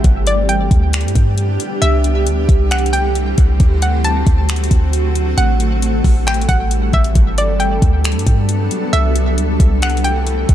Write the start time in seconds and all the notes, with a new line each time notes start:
0.04 G1 D3 G3 B3 D4 G4, kick, closed hi-hat
0.27 D5, closed hi-hat
0.49 G5, closed hi-hat
0.71 D2, kick, closed hi-hat
0.93 finger snap, closed hi-hat
1.01 G2, closed hi-hat
1.08 closed hi-hat
1.15 G2, kick, closed hi-hat
1.38 closed hi-hat
1.60 closed hi-hat
1.82 C2 E3 A3 C4 E5, closed hi-hat
2.04 closed hi-hat
2.27 D2, closed hi-hat
2.49 C2, kick, closed hi-hat
2.71 F#5, finger snap, closed hi-hat
2.79 closed hi-hat
2.86 closed hi-hat
2.93 G5, closed hi-hat
3.15 closed hi-hat
3.38 C2, kick, closed hi-hat
3.60 D2 D3 F#3 A3 F#4, kick, closed hi-hat
3.82 F#5, closed hi-hat
4.04 A5, closed hi-hat
4.27 D2, kick, closed hi-hat
4.49 finger snap, closed hi-hat
4.56 closed hi-hat
4.64 closed hi-hat
4.71 D2, kick, closed hi-hat
4.93 closed hi-hat
5.15 closed hi-hat
5.38 A1 E3 G3 C4 A4 F#5, closed hi-hat
5.60 closed hi-hat
5.82 closed hi-hat
6.04 A1, kick, open hi-hat
6.27 G5, finger snap, closed hi-hat
6.34 closed hi-hat
6.42 closed hi-hat
6.49 A1 F#5, kick, closed hi-hat
6.71 closed hi-hat
6.93 A1 E5, kick, closed hi-hat
7.04 closed hi-hat
7.15 G1 F#3 B3 D4, kick, closed hi-hat
7.38 D5, closed hi-hat
7.60 G5, closed hi-hat
7.82 D2, kick, closed hi-hat
8.04 finger snap, closed hi-hat
8.12 G2, closed hi-hat
8.19 closed hi-hat
8.27 G2, kick, closed hi-hat
8.49 closed hi-hat
8.71 closed hi-hat
8.93 C2 E3 A3 C4 E5, closed hi-hat
9.16 closed hi-hat
9.38 D2, closed hi-hat
9.60 C2, kick, closed hi-hat
9.82 F#5, finger snap, closed hi-hat
9.90 closed hi-hat
9.97 closed hi-hat
10.04 G5, closed hi-hat
10.27 closed hi-hat
10.49 C2, kick, closed hi-hat